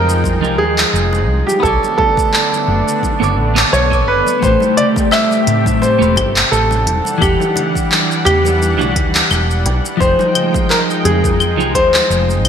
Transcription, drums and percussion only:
0.09 shaker
0.24 kick, high conga, shaker
0.44 shaker
0.59 muted conga
0.77 clap, high conga, shaker
0.95 shaker
1.13 muted conga, shaker
1.48 high conga, shaker
1.64 kick, shaker
1.83 muted conga, shaker
1.98 kick, high conga, low conga
2.17 kick, shaker
2.33 clap, muted conga, shaker
2.52 high conga, shaker
2.67 low conga
2.88 shaker
3.03 kick, muted conga, high conga, shaker
3.22 low conga, shaker
3.56 clap, muted conga, high conga, shaker
3.74 shaker
3.92 kick, shaker
4.26 muted conga, high conga, shaker
4.42 kick, muted conga, shaker
4.60 high conga, shaker
4.77 closed hi-hat, low conga
4.96 kick, muted conga, shaker
5.11 clap, high conga, claves, shaker
5.31 muted conga, shaker
5.47 closed hi-hat, low conga
5.66 kick, high conga, shaker
5.82 muted conga, shaker
6.02 shaker
6.16 kick, closed hi-hat, muted conga, high conga, claves
6.36 clap, shaker
6.53 shaker
6.71 muted conga, shaker
6.87 closed hi-hat, high conga
7.05 muted conga, shaker
7.22 kick, claves, shaker
7.40 high conga, shaker
7.56 closed hi-hat, muted conga, low conga
7.75 kick, shaker
7.91 clap, muted conga, high conga, shaker
8.11 shaker
8.26 closed hi-hat, low conga, claves
8.45 muted conga, high conga, shaker
8.62 shaker
8.79 muted conga, low conga, shaker
8.96 kick, closed hi-hat, high conga
9.15 clap, shaker
9.31 muted conga, claves, shaker
9.51 shaker
9.66 closed hi-hat, muted conga, high conga
9.86 shaker
10.01 kick, shaker
10.19 muted conga, high conga, shaker
10.35 closed hi-hat, low conga, claves
10.54 kick, muted conga, shaker
10.70 clap, high conga, shaker
10.90 shaker
11.05 closed hi-hat, muted conga, low conga
11.24 kick, high conga, shaker
11.40 muted conga, claves, shaker
11.60 shaker
11.75 kick, closed hi-hat, high conga
11.94 clap, muted conga, shaker
12.11 shaker
12.29 muted conga, shaker
12.45 closed hi-hat, high conga, claves

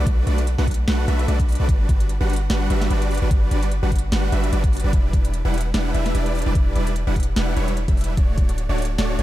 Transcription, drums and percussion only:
0.07 kick, closed hi-hat
0.27 closed hi-hat
0.38 closed hi-hat
0.47 closed hi-hat
0.58 snare
0.67 kick, closed hi-hat
0.71 closed hi-hat
0.74 closed hi-hat
0.88 snare, closed hi-hat
1.08 closed hi-hat
1.19 closed hi-hat
1.28 closed hi-hat
1.40 kick, closed hi-hat
1.49 closed hi-hat, open hi-hat
1.55 closed hi-hat
1.69 kick, closed hi-hat
1.89 kick, closed hi-hat
2.00 closed hi-hat
2.09 closed hi-hat
2.30 closed hi-hat
2.33 closed hi-hat
2.36 closed hi-hat
2.50 snare, closed hi-hat
2.70 closed hi-hat
2.81 snare, closed hi-hat
2.90 closed hi-hat
3.02 closed hi-hat
3.11 closed hi-hat, open hi-hat
3.17 closed hi-hat
3.31 kick, closed hi-hat
3.51 closed hi-hat
3.63 closed hi-hat
3.71 closed hi-hat
3.92 kick, closed hi-hat
3.96 closed hi-hat
3.99 closed hi-hat
4.12 snare, closed hi-hat
4.32 closed hi-hat
4.44 closed hi-hat
4.53 closed hi-hat
4.64 kick, closed hi-hat
4.73 closed hi-hat, open hi-hat
4.80 closed hi-hat
4.93 kick, closed hi-hat
5.13 kick, closed hi-hat
5.25 closed hi-hat
5.34 closed hi-hat
5.54 closed hi-hat
5.58 closed hi-hat
5.61 closed hi-hat
5.74 snare, closed hi-hat
5.94 closed hi-hat
6.06 snare, closed hi-hat
6.15 closed hi-hat
6.26 closed hi-hat
6.35 closed hi-hat, open hi-hat
6.42 closed hi-hat
6.55 kick, closed hi-hat
6.76 closed hi-hat
6.87 closed hi-hat
6.96 closed hi-hat
7.16 kick, closed hi-hat
7.20 closed hi-hat
7.23 closed hi-hat
7.36 snare, closed hi-hat
7.57 closed hi-hat
7.68 closed hi-hat
7.77 closed hi-hat
7.88 kick, closed hi-hat
7.97 closed hi-hat, open hi-hat
8.04 closed hi-hat
8.17 kick, closed hi-hat
8.38 kick, closed hi-hat
8.49 closed hi-hat
8.58 closed hi-hat
8.78 closed hi-hat
8.82 closed hi-hat
8.85 closed hi-hat
8.98 snare, closed hi-hat
9.19 closed hi-hat

